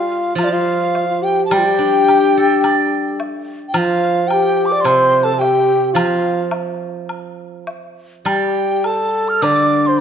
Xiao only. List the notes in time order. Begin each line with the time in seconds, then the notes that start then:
Already playing: F4
0.37 F4
0.52 F4
1.09 F4
1.22 G4
1.48 G4
1.58 F4
1.66 G4
3.75 F4
4.31 G4
4.72 D5
4.85 C5
5.25 A4
5.37 G4
5.94 F4
8.25 G4
8.85 A4
9.44 D5
9.89 C5